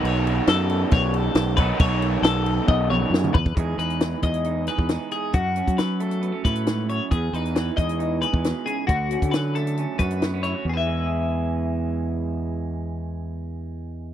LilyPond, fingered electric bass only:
\new Staff \with { instrumentName = "Fingered electric bass" } { \clef bass \time 4/4 \key e \major \tempo 4 = 135 b,,4 fis,4 b,,4 b,,4 | b,,4 b,,4 b,,4 fis,8 e,8 | e,8 e,4 e,4~ e,16 e,8 r8. | fis,8. fis4.~ fis16 a,4. |
e,8 e,4 e,4~ e,16 e,8 r8. | d,8. d4.~ d16 fis,4. | e,1~ | e,1 | }